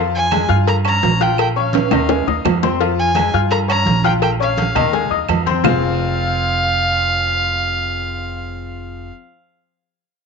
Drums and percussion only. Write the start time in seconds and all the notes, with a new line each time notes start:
0.15 high conga
0.31 cowbell, high conga, low agogo, claves
0.50 high conga
0.67 cowbell, high conga, low agogo
0.85 high conga, low agogo, claves
1.03 cowbell, high conga, low timbale
1.21 cowbell, low agogo
1.38 cowbell, high conga, low agogo, claves
1.56 high conga
1.73 cowbell, high conga, high timbale, low agogo
1.91 cowbell, high bongo, low conga, high timbale, low agogo, claves
2.09 cowbell, high bongo, high conga, high timbale
2.27 high bongo, high conga
2.45 cowbell, low bongo, high conga, low timbale, low agogo, claves
2.63 cowbell, low bongo, low timbale, low agogo
2.81 cowbell, high conga, low agogo
2.98 high conga
3.15 cowbell, high conga, low agogo, claves
3.33 high conga
3.51 cowbell, high conga, low agogo
3.68 high conga, low agogo, claves
3.86 cowbell, high conga
4.03 cowbell, high conga, low agogo
4.21 cowbell, high conga, low agogo, claves
4.40 high conga
4.58 cowbell, high conga, low agogo
4.76 cowbell, low conga, low agogo, claves
4.93 cowbell, high conga
5.12 high conga
5.29 cowbell, high conga, low timbale, low agogo, claves
5.47 cowbell, high conga, low agogo
5.64 low bongo, low conga, low timbale, claves